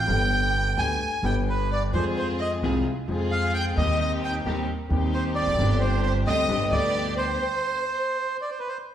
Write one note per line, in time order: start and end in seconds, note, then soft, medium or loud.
0.00 0.73 G5 medium
0.00 0.81 G5 medium
0.05 0.73 G1 medium
0.05 0.74 G1 medium
0.05 0.73 G2 medium
0.05 0.72 D3 medium
0.05 0.73 G3 medium
0.05 0.74 B3 medium
0.05 0.74 G4 medium
0.76 0.96 D2 medium
0.76 0.96 D3 medium
0.76 0.96 G3 medium
0.76 0.96 B3 soft
0.76 0.96 G4 medium
0.76 1.21 G#5 medium
0.76 1.25 G#5 medium
1.22 1.90 G1 medium
1.22 1.90 G2 medium
1.22 1.89 D3 medium
1.22 1.90 G3 medium
1.22 1.90 B3 medium
1.22 1.35 G5 medium
1.26 1.91 G4 medium
1.48 1.69 B4 medium
1.48 1.70 B4 medium
1.71 1.81 D5 medium
1.71 1.82 D5 medium
1.93 2.59 F2 medium
1.93 2.60 F2 medium
1.93 2.60 F3 medium
1.93 2.59 G#3 medium
1.93 2.59 C4 medium
1.93 2.60 C4 soft
1.93 2.59 F4 medium
1.93 2.59 G#4 medium
1.93 2.61 G#4 medium
1.93 2.04 C5 medium
1.93 2.05 C5 medium
2.17 2.27 C5 medium
2.17 2.29 C5 medium
2.39 2.50 D#5 soft
2.39 2.51 D#5 medium
2.62 2.82 C2 medium
2.62 2.82 C3 medium
2.62 2.82 F3 medium
2.62 2.82 G#3 medium
2.62 2.82 C4 medium
2.62 2.83 C4 medium
2.62 2.82 F4 medium
2.62 2.82 G#4 medium
2.62 2.83 G#4 medium
3.08 3.74 F2 medium
3.08 3.74 F3 medium
3.08 3.74 G#3 medium
3.08 3.74 C4 medium
3.08 3.75 C4 soft
3.08 3.74 F4 medium
3.08 3.74 G#4 medium
3.08 3.75 G#4 medium
3.31 3.52 F5 medium
3.31 3.53 F5 medium
3.53 3.64 G5 medium
3.53 3.65 G5 medium
3.76 4.42 D#2 medium
3.76 4.42 D#3 medium
3.76 4.42 G3 medium
3.76 4.42 C4 medium
3.76 4.43 C4 soft
3.76 4.42 D#4 medium
3.76 4.42 G4 medium
3.76 3.98 D#5 medium
3.76 3.99 D#5 medium
3.80 4.44 G4 medium
4.00 4.11 D#5 medium
4.00 4.12 D#5 medium
4.24 4.34 G5 medium
4.24 4.35 G5 medium
4.45 4.64 D#2 medium
4.45 4.65 D#2 medium
4.45 4.65 D#3 medium
4.45 4.65 G3 medium
4.45 4.65 C4 medium
4.45 4.65 D#4 medium
4.45 4.65 G4 medium
4.89 5.40 D#2 medium
4.89 5.55 D#2 medium
4.89 5.55 D#3 medium
4.89 5.55 G3 medium
4.89 5.55 C4 medium
4.89 5.56 C4 medium
4.89 5.55 D#4 medium
4.89 5.55 G4 medium
4.89 5.56 G4 medium
5.13 5.23 C5 medium
5.13 5.24 C5 medium
5.35 5.82 D5 loud
5.35 5.78 D5 medium
5.41 5.47 E1 soft
5.41 5.48 E2 soft
5.47 5.52 F1 medium
5.47 5.53 F2 medium
5.53 5.58 F#1 medium
5.53 5.59 F#2 medium
5.58 6.23 G1 medium
5.58 6.24 G1 medium
5.58 6.23 G2 medium
5.58 6.22 D3 medium
5.58 6.23 G3 medium
5.58 6.23 C4 medium
5.58 6.24 C4 medium
5.58 6.23 D4 medium
5.58 6.23 G4 medium
5.62 6.25 G4 medium
5.80 6.01 C5 medium
5.80 6.02 C5 medium
6.03 6.13 C5 medium
6.03 6.15 C5 medium
6.26 6.45 D2 medium
6.26 6.46 D2 medium
6.26 6.45 D3 medium
6.26 6.46 G3 medium
6.26 6.45 C4 medium
6.26 6.45 D4 medium
6.26 6.45 G4 medium
6.26 6.46 G4 medium
6.26 6.68 D#5 medium
6.26 6.73 D#5 medium
6.49 6.68 G1 medium
6.49 6.68 G2 medium
6.49 6.68 D3 medium
6.49 6.68 G3 medium
6.49 6.68 B3 medium
6.49 6.68 D4 medium
6.49 6.68 G4 medium
6.71 7.36 D2 medium
6.71 7.37 D2 medium
6.71 7.37 D3 medium
6.71 7.36 G3 medium
6.71 7.36 B3 medium
6.71 7.37 B3 medium
6.71 7.36 D4 medium
6.71 7.36 G4 medium
6.71 7.38 G4 medium
6.71 7.14 D5 medium
7.17 8.37 C5 medium
8.41 8.50 D5 medium
8.51 8.59 C5 medium
8.59 8.68 B4 medium
8.68 8.78 C5 medium